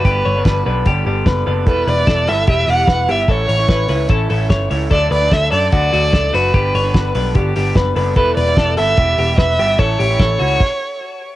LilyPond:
<<
  \new Staff \with { instrumentName = "Violin" } { \time 4/4 \key e \dorian \tempo 4 = 148 b'4. r2 r8 | b'8 d''4 e''8 e''8 fis''4 e''8 | cis''2 r2 | d''8 d''8 e''8 d''8 d''4. b'8~ |
b'4. r2 r8 | b'8 d''4 e''4. e''4 | cis''2.~ cis''8 r8 | }
  \new Staff \with { instrumentName = "Clean electric guitar" } { \time 4/4 \key e \dorian g'8 cis''8 b'8 b'8 g'8 g'8 b'8 b'8 | a'8 b'8 a'8 a'8 g'8 g'8 b'8 g'8 | a'8 cis''8 b'8 b'8 a'8 a'8 cis''8 cis''8 | a'8 b'8 a'8 a'8 fis'8 fis'8 a'8 fis'8 |
g'8 cis''8 b'8 b'8 g'8 g'8 b'8 b'8 | a'8 b'8 a'8 a'8 g'8 g'8 b'8 g'8 | a'8 g'8 a'8 fis'8 r2 | }
  \new Staff \with { instrumentName = "Clean electric guitar" } { \time 4/4 \key e \dorian <g, d g b d'>8. <g, d g b d'>8. <g, d g b d'>8 <d g b d'>8 <d g b d'>4 <g, d g b d'>8 | <e g b e'>8. <e g b e'>8. <e g b e'>8 <e g b e'>8 <e g b e'>4 <e g b e'>8 | <a, e a cis' e'>8. <a, e a cis' e'>8. <a, e a cis' e'>8 <e a cis' e'>8 <e a cis' e'>4 <a, e a cis' e'>8 | <d fis a d'>8. <d fis a d'>8. <d fis a d'>8 <d fis a d'>8 <d fis a d'>4 <d fis a d'>8 |
<g, d g b d'>8. <g, d g b d'>8. <g, d g b d'>8 <d g b d'>8 <d g b d'>4 <g, d g b d'>8 | <e g b e'>8. <e g b e'>8. <e g b e'>8 <e g b e'>8 <e g b e'>4 <e g b e'>8 | <a, e a cis' e'>8. <a, e a cis' e'>8. <a, e a cis' e'>8 r2 | }
  \new Staff \with { instrumentName = "Picked electric bass" } { \clef bass \time 4/4 \key e \dorian g,,8 g,,8 g,,8 b,,8 g,,8 g,,8 fis,,8 fis,,8 | e,,8 e,,8 e,,8 g,,8 e,,8 e,,8 e,,8 g,,8 | a,,8 a,,8 a,,8 cis,8 a,,8 a,,8 g,,8 cis,8 | d,8 d,8 d,8 fis,8 d,8 d,8 cis,8 fis,,8 |
g,,8 g,,8 g,,8 b,,8 g,,8 g,,8 fis,,8 fis,,8 | e,,8 e,,8 e,,8 g,,8 e,,8 e,,8 e,,8 g,,8 | a,,8 a,,8 a,,8 cis,8 r2 | }
  \new DrumStaff \with { instrumentName = "Drums" } \drummode { \time 4/4 <hh bd>4 <hh bd sn>4 <hh bd>4 <hh bd sn>4 | <hh bd>8 hho8 <hh bd sn>8 hho8 <hh bd>8 hho8 <hh bd sn>8 hho8 | <hh bd>8 hho8 <hh bd sn>8 hho8 <hh bd>8 hho8 <hh bd sn>8 hho8 | <hh bd>8 hho8 <hh bd sn>8 hho8 <hh bd>8 hho8 <hh bd sn>8 hho8 |
<hh bd>8 hho8 <hh bd sn>8 hho8 <hh bd>8 hho8 <hh bd sn>8 hho8 | <hh bd>8 hho8 <hh bd sn>8 hho8 <hh bd>8 hho8 <hh bd sn>8 hho8 | <hh bd>8 hho8 <hh bd sn>8 hho8 <cymc bd>4 r4 | }
>>